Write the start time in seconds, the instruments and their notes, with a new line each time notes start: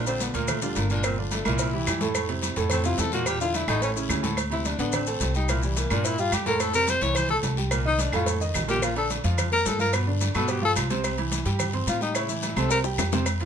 Already playing: upright bass A#1
0.06 grand piano D3 D4 F4, tenor saxophone C4, cowbell, high conga, low agogo, maracas
0.20 tenor saxophone B3, cowbell, high conga, low timbale, low agogo, short guiro, maracas
0.34 upright bass D2, grand piano A#2 A#3 A#4, tenor saxophone A#3, cowbell, short guiro, maracas
0.48 tenor saxophone A3, cowbell, high conga, low conga, low agogo, long guiro, claves, maracas
0.62 grand piano D3 D4 F4, tenor saxophone G3, cowbell, high conga, maracas
0.76 upright bass G1, tenor saxophone A#3, cowbell, high conga, low timbale, low agogo, short guiro, maracas
0.90 grand piano A#2 A#3 A#4, tenor saxophone D4, high conga, short guiro, maracas
1.03 grand piano A#2 A#3 A#4, tenor saxophone C4, cowbell, high conga, low agogo, long guiro, claves, maracas
1.18 grand piano D3 D4 F4, tenor saxophone F3, high conga
1.31 tenor saxophone A3, cowbell, high conga, low timbale, low agogo, short guiro, maracas
1.45 upright bass C2, grand piano A#2 A#3 A#4, tenor saxophone E4, high conga, low agogo, short guiro, claves, maracas
1.59 cowbell, high conga, low agogo, long guiro, maracas
1.73 grand piano E3 E4 G4, high conga
1.87 upright bass F2, grand piano E3 E4 G4, cowbell, high conga, low timbale, low agogo, short guiro, claves, maracas
2.01 grand piano A2 A3 A4, cowbell, high conga, short guiro, maracas
2.15 cowbell, high conga, low agogo, long guiro, claves, maracas
2.29 grand piano C3 C4 E4, cowbell, high conga, low agogo
2.42 cowbell, high conga, low timbale, low agogo, short guiro, maracas
2.56 upright bass F2, grand piano A2 A3 A4, cowbell, short guiro, maracas
2.70 tenor saxophone C4, cowbell, high conga, low conga, low agogo, long guiro, claves, maracas
2.84 grand piano C3 C4 E4, tenor saxophone F4, cowbell, high conga, maracas
2.98 upright bass E2, tenor saxophone A4, cowbell, high conga, low timbale, low agogo, short guiro, maracas
3.12 grand piano A#2 A#3 A#4, tenor saxophone F#4, high conga, short guiro, maracas
3.26 grand piano A#2 A#3 A#4, tenor saxophone G4, cowbell, high conga, low agogo, long guiro, claves, maracas
3.41 grand piano D3 D4 E4, tenor saxophone F4, maracas
3.54 tenor saxophone E4, cowbell, high conga, low timbale, low agogo, short guiro, maracas
3.68 upright bass A1, grand piano A2 A3 A4, tenor saxophone D#4, high conga, low agogo, short guiro, claves, maracas
3.82 tenor saxophone C#4, cowbell, high conga, low agogo, long guiro, maracas
3.95 grand piano C#3 C#4 E4, high conga, maracas
4.09 upright bass D2, grand piano C#3 C#4 E4, cowbell, high conga, low timbale, low agogo, short guiro, claves, maracas
4.23 grand piano A2 A3 A4, cowbell, high conga, short guiro, maracas
4.37 cowbell, high conga, low agogo, long guiro, claves, maracas
4.50 grand piano C3 C4 C5, tenor saxophone E4, cowbell, low agogo
4.65 tenor saxophone D4, cowbell, high conga, low timbale, low agogo, short guiro, maracas
4.79 upright bass A1, grand piano D3 D4 D5, tenor saxophone B3, cowbell, short guiro, maracas
4.92 tenor saxophone C4, cowbell, high conga, low conga, low agogo, long guiro, claves, maracas
5.07 grand piano A3 A4 A5, cowbell, high conga, maracas
5.20 upright bass C2, cowbell, high conga, low timbale, low agogo, short guiro, maracas
5.34 grand piano G3 G4 G5, tenor saxophone D#4, high conga, short guiro, maracas
5.48 grand piano A#2 A#3 A#4, tenor saxophone E4, cowbell, high conga, low agogo, long guiro, claves, maracas
5.63 grand piano E3 E4 E5, tenor saxophone G3, maracas
5.76 tenor saxophone A#3, cowbell, high conga, low timbale, low agogo, short guiro, maracas
5.90 upright bass G2, grand piano A#2 A#3 A#4, tenor saxophone D4, high conga, low agogo, short guiro, claves, maracas
6.04 tenor saxophone E4, cowbell, high conga, low agogo, long guiro, maracas
6.18 grand piano G3 G4 G5, tenor saxophone F4, high conga, maracas
6.32 upright bass F2, tenor saxophone G4, cowbell, high conga, low timbale, low agogo, short guiro, claves, maracas
6.46 grand piano A2 A3 A4, tenor saxophone A#4, cowbell, high conga, short guiro, maracas
6.60 tenor saxophone A4, cowbell, high conga, low agogo, long guiro, claves, maracas
6.74 grand piano C3 C4 C5, tenor saxophone A#4, cowbell, high conga, low agogo, maracas
6.87 tenor saxophone C5, cowbell, high conga, low timbale, low agogo, short guiro, maracas
7.01 upright bass C2, grand piano E3 E4 E5, tenor saxophone C#5, cowbell, short guiro, maracas
7.15 tenor saxophone C5, cowbell, high conga, low conga, low agogo, long guiro, claves, maracas
7.29 grand piano A3 A4 A5, tenor saxophone A4, cowbell, high conga, low conga
7.43 upright bass C2, cowbell, high conga, low timbale, low agogo, short guiro, maracas
7.57 grand piano G3 G4 G5, high conga, short guiro, maracas
7.71 grand piano A#2 A#3 A#4, cowbell, high conga, low agogo, long guiro, claves, maracas
7.85 grand piano D#3 D#4 D#5, tenor saxophone D#4, high conga
7.98 tenor saxophone D4, cowbell, high conga, low timbale, low agogo, short guiro, maracas
8.13 upright bass F2, grand piano A2 A3 A4, tenor saxophone F4, high conga, low agogo, short guiro, claves, maracas
8.26 cowbell, high conga, low agogo, long guiro, maracas
8.41 grand piano D#3 D#4 D#5, maracas
8.54 upright bass A#1, cowbell, low conga, low timbale, low agogo, short guiro, claves, maracas
8.65 grand piano A#2 A#3 A#4, cowbell, low conga, maracas
8.69 tenor saxophone G4, short guiro
8.74 low conga
8.82 tenor saxophone F4, cowbell, high conga, low agogo, long guiro, claves, maracas
8.96 grand piano D3 D4 D5, tenor saxophone A4, cowbell, high conga, low agogo
9.10 cowbell, high conga, low timbale, low agogo, short guiro, maracas
9.24 upright bass F2, grand piano F3 F4 F5, cowbell, short guiro, maracas
9.38 cowbell, high conga, low conga, low agogo, long guiro, claves, maracas
9.51 grand piano A#3 A#4 A#5, tenor saxophone A#4, cowbell, high conga
9.66 upright bass G2, tenor saxophone A4, cowbell, high conga, low timbale, low agogo, short guiro, maracas
9.79 grand piano F3 F4 F5, tenor saxophone A#4, high conga, short guiro, maracas
9.93 grand piano B2 B3 B4, cowbell, high conga, low agogo, long guiro, claves, maracas
10.07 grand piano D3 D4 D5, high conga
10.21 cowbell, high conga, low timbale, low agogo, short guiro, maracas
10.34 upright bass G2, grand piano B2 B3 B4, tenor saxophone A4, high conga, low agogo, short guiro, claves, maracas
10.48 tenor saxophone G4, cowbell, high conga, low agogo, long guiro, maracas
10.62 grand piano F3 F4 F5, tenor saxophone A4, high conga
10.76 upright bass C2, cowbell, high conga, low timbale, low agogo, short guiro, claves, maracas
10.90 grand piano C3 C4 C5, cowbell, high conga, short guiro, maracas
11.04 cowbell, high conga, low agogo, long guiro, claves, maracas
11.18 grand piano E3 E4 E5, cowbell, high conga, low agogo
11.31 cowbell, high conga, low timbale, low agogo, short guiro, maracas
11.45 upright bass G2, grand piano G3 G4 G5, cowbell, short guiro, maracas
11.59 cowbell, high conga, low conga, low agogo, long guiro, claves, maracas
11.73 grand piano C4 C5 C6, cowbell, high conga, low conga
11.87 upright bass A2, tenor saxophone F4, cowbell, high conga, low timbale, low agogo, short guiro, maracas
12.01 grand piano G3 G4 G5, tenor saxophone D#4, high conga, short guiro, maracas
12.14 grand piano C#3 C#4 C#5, tenor saxophone E4, cowbell, high conga, low agogo, long guiro, claves, maracas
12.29 grand piano E3 E4 E5, high conga, maracas
12.43 cowbell, high conga, low timbale, low agogo, short guiro, maracas
12.56 upright bass C2, grand piano C3 C4 C5, tenor saxophone A4, high conga, low agogo, short guiro, claves, maracas
12.70 tenor saxophone A#4, cowbell, high conga, low agogo, long guiro, maracas
12.84 grand piano G3 G4 G5, high bongo, high conga, maracas
12.98 upright bass F2, cowbell, low bongo, high conga, low timbale, low agogo, short guiro, claves, maracas
13.12 grand piano C3 C4 C5, cowbell, low bongo, high conga, short guiro, maracas
13.26 cowbell, high conga, low agogo, long guiro, claves, maracas
13.40 grand piano E3 E4 F4, cowbell, low agogo